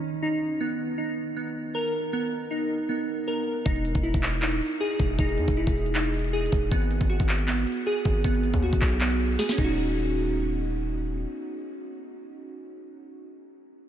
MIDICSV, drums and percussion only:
0, 0, Header, 1, 2, 480
1, 0, Start_track
1, 0, Tempo, 382166
1, 755, Time_signature, 4, 2, 24, 8
1, 17445, End_track
2, 0, Start_track
2, 0, Title_t, "Drums"
2, 4594, Note_on_c, 9, 42, 90
2, 4595, Note_on_c, 9, 36, 119
2, 4720, Note_off_c, 9, 36, 0
2, 4720, Note_off_c, 9, 42, 0
2, 4724, Note_on_c, 9, 42, 58
2, 4836, Note_off_c, 9, 42, 0
2, 4836, Note_on_c, 9, 42, 77
2, 4961, Note_off_c, 9, 42, 0
2, 4962, Note_on_c, 9, 36, 94
2, 4962, Note_on_c, 9, 42, 61
2, 5075, Note_off_c, 9, 42, 0
2, 5075, Note_on_c, 9, 42, 50
2, 5088, Note_off_c, 9, 36, 0
2, 5200, Note_off_c, 9, 42, 0
2, 5202, Note_on_c, 9, 36, 98
2, 5202, Note_on_c, 9, 42, 80
2, 5313, Note_off_c, 9, 42, 0
2, 5313, Note_on_c, 9, 42, 79
2, 5315, Note_on_c, 9, 39, 100
2, 5328, Note_off_c, 9, 36, 0
2, 5438, Note_off_c, 9, 42, 0
2, 5441, Note_off_c, 9, 39, 0
2, 5443, Note_on_c, 9, 42, 52
2, 5554, Note_on_c, 9, 39, 124
2, 5556, Note_off_c, 9, 42, 0
2, 5556, Note_on_c, 9, 42, 77
2, 5679, Note_off_c, 9, 39, 0
2, 5681, Note_off_c, 9, 42, 0
2, 5683, Note_on_c, 9, 42, 68
2, 5795, Note_off_c, 9, 42, 0
2, 5795, Note_on_c, 9, 42, 78
2, 5858, Note_off_c, 9, 42, 0
2, 5858, Note_on_c, 9, 42, 67
2, 5922, Note_off_c, 9, 42, 0
2, 5922, Note_on_c, 9, 42, 56
2, 5978, Note_off_c, 9, 42, 0
2, 5978, Note_on_c, 9, 42, 45
2, 6034, Note_off_c, 9, 42, 0
2, 6034, Note_on_c, 9, 42, 46
2, 6114, Note_off_c, 9, 42, 0
2, 6114, Note_on_c, 9, 42, 60
2, 6194, Note_off_c, 9, 42, 0
2, 6194, Note_on_c, 9, 42, 76
2, 6272, Note_off_c, 9, 42, 0
2, 6272, Note_on_c, 9, 42, 77
2, 6274, Note_on_c, 9, 36, 102
2, 6397, Note_off_c, 9, 42, 0
2, 6400, Note_off_c, 9, 36, 0
2, 6514, Note_on_c, 9, 42, 92
2, 6515, Note_on_c, 9, 36, 118
2, 6640, Note_off_c, 9, 36, 0
2, 6640, Note_off_c, 9, 42, 0
2, 6643, Note_on_c, 9, 42, 60
2, 6756, Note_off_c, 9, 42, 0
2, 6756, Note_on_c, 9, 42, 77
2, 6881, Note_off_c, 9, 42, 0
2, 6881, Note_on_c, 9, 42, 58
2, 6882, Note_on_c, 9, 36, 93
2, 6994, Note_off_c, 9, 42, 0
2, 6994, Note_on_c, 9, 42, 49
2, 7007, Note_off_c, 9, 36, 0
2, 7120, Note_off_c, 9, 42, 0
2, 7121, Note_on_c, 9, 42, 83
2, 7122, Note_on_c, 9, 36, 97
2, 7233, Note_on_c, 9, 46, 81
2, 7247, Note_off_c, 9, 42, 0
2, 7248, Note_off_c, 9, 36, 0
2, 7358, Note_off_c, 9, 46, 0
2, 7362, Note_on_c, 9, 42, 54
2, 7473, Note_on_c, 9, 39, 120
2, 7475, Note_off_c, 9, 42, 0
2, 7475, Note_on_c, 9, 42, 73
2, 7599, Note_off_c, 9, 39, 0
2, 7601, Note_off_c, 9, 42, 0
2, 7603, Note_on_c, 9, 42, 69
2, 7714, Note_off_c, 9, 42, 0
2, 7714, Note_on_c, 9, 42, 77
2, 7778, Note_off_c, 9, 42, 0
2, 7778, Note_on_c, 9, 42, 64
2, 7842, Note_off_c, 9, 42, 0
2, 7842, Note_on_c, 9, 42, 55
2, 7898, Note_off_c, 9, 42, 0
2, 7898, Note_on_c, 9, 42, 45
2, 7954, Note_off_c, 9, 42, 0
2, 7954, Note_on_c, 9, 42, 46
2, 8034, Note_off_c, 9, 42, 0
2, 8034, Note_on_c, 9, 42, 58
2, 8114, Note_off_c, 9, 42, 0
2, 8114, Note_on_c, 9, 42, 78
2, 8192, Note_off_c, 9, 42, 0
2, 8192, Note_on_c, 9, 42, 76
2, 8194, Note_on_c, 9, 36, 107
2, 8317, Note_off_c, 9, 42, 0
2, 8320, Note_off_c, 9, 36, 0
2, 8434, Note_on_c, 9, 36, 121
2, 8434, Note_on_c, 9, 42, 91
2, 8560, Note_off_c, 9, 36, 0
2, 8560, Note_off_c, 9, 42, 0
2, 8564, Note_on_c, 9, 42, 60
2, 8676, Note_off_c, 9, 42, 0
2, 8676, Note_on_c, 9, 42, 78
2, 8801, Note_off_c, 9, 42, 0
2, 8801, Note_on_c, 9, 42, 61
2, 8802, Note_on_c, 9, 36, 95
2, 8915, Note_off_c, 9, 42, 0
2, 8915, Note_on_c, 9, 42, 49
2, 8927, Note_off_c, 9, 36, 0
2, 9040, Note_off_c, 9, 42, 0
2, 9042, Note_on_c, 9, 36, 97
2, 9042, Note_on_c, 9, 42, 84
2, 9153, Note_off_c, 9, 42, 0
2, 9153, Note_on_c, 9, 42, 80
2, 9155, Note_on_c, 9, 39, 99
2, 9168, Note_off_c, 9, 36, 0
2, 9278, Note_off_c, 9, 42, 0
2, 9281, Note_off_c, 9, 39, 0
2, 9283, Note_on_c, 9, 42, 53
2, 9394, Note_on_c, 9, 39, 121
2, 9396, Note_off_c, 9, 42, 0
2, 9396, Note_on_c, 9, 42, 74
2, 9519, Note_off_c, 9, 39, 0
2, 9521, Note_off_c, 9, 42, 0
2, 9524, Note_on_c, 9, 42, 67
2, 9635, Note_off_c, 9, 42, 0
2, 9635, Note_on_c, 9, 42, 75
2, 9698, Note_off_c, 9, 42, 0
2, 9698, Note_on_c, 9, 42, 66
2, 9762, Note_off_c, 9, 42, 0
2, 9762, Note_on_c, 9, 42, 56
2, 9819, Note_off_c, 9, 42, 0
2, 9819, Note_on_c, 9, 42, 45
2, 9875, Note_off_c, 9, 42, 0
2, 9875, Note_on_c, 9, 42, 45
2, 9955, Note_off_c, 9, 42, 0
2, 9955, Note_on_c, 9, 42, 61
2, 10035, Note_off_c, 9, 42, 0
2, 10035, Note_on_c, 9, 42, 76
2, 10112, Note_off_c, 9, 42, 0
2, 10112, Note_on_c, 9, 42, 74
2, 10115, Note_on_c, 9, 36, 102
2, 10238, Note_off_c, 9, 42, 0
2, 10240, Note_off_c, 9, 36, 0
2, 10354, Note_on_c, 9, 42, 90
2, 10355, Note_on_c, 9, 36, 120
2, 10480, Note_off_c, 9, 36, 0
2, 10480, Note_off_c, 9, 42, 0
2, 10483, Note_on_c, 9, 42, 58
2, 10596, Note_off_c, 9, 42, 0
2, 10596, Note_on_c, 9, 42, 79
2, 10721, Note_off_c, 9, 42, 0
2, 10721, Note_on_c, 9, 42, 60
2, 10722, Note_on_c, 9, 36, 96
2, 10834, Note_off_c, 9, 42, 0
2, 10834, Note_on_c, 9, 42, 77
2, 10847, Note_off_c, 9, 36, 0
2, 10960, Note_off_c, 9, 42, 0
2, 10961, Note_on_c, 9, 42, 49
2, 10962, Note_on_c, 9, 36, 97
2, 11072, Note_on_c, 9, 46, 77
2, 11074, Note_on_c, 9, 39, 100
2, 11075, Note_off_c, 9, 36, 0
2, 11075, Note_on_c, 9, 36, 112
2, 11087, Note_off_c, 9, 42, 0
2, 11198, Note_off_c, 9, 46, 0
2, 11200, Note_off_c, 9, 39, 0
2, 11201, Note_off_c, 9, 36, 0
2, 11202, Note_on_c, 9, 42, 54
2, 11313, Note_on_c, 9, 39, 124
2, 11315, Note_off_c, 9, 42, 0
2, 11315, Note_on_c, 9, 42, 75
2, 11439, Note_off_c, 9, 39, 0
2, 11441, Note_off_c, 9, 42, 0
2, 11443, Note_on_c, 9, 42, 67
2, 11554, Note_off_c, 9, 42, 0
2, 11554, Note_on_c, 9, 42, 45
2, 11634, Note_off_c, 9, 42, 0
2, 11634, Note_on_c, 9, 42, 64
2, 11714, Note_off_c, 9, 42, 0
2, 11714, Note_on_c, 9, 42, 78
2, 11795, Note_off_c, 9, 42, 0
2, 11795, Note_on_c, 9, 38, 66
2, 11795, Note_on_c, 9, 42, 63
2, 11874, Note_off_c, 9, 42, 0
2, 11874, Note_on_c, 9, 42, 61
2, 11920, Note_off_c, 9, 38, 0
2, 11921, Note_on_c, 9, 38, 73
2, 11954, Note_off_c, 9, 42, 0
2, 11954, Note_on_c, 9, 42, 62
2, 12034, Note_on_c, 9, 36, 112
2, 12034, Note_on_c, 9, 49, 88
2, 12047, Note_off_c, 9, 38, 0
2, 12080, Note_off_c, 9, 42, 0
2, 12160, Note_off_c, 9, 36, 0
2, 12160, Note_off_c, 9, 49, 0
2, 17445, End_track
0, 0, End_of_file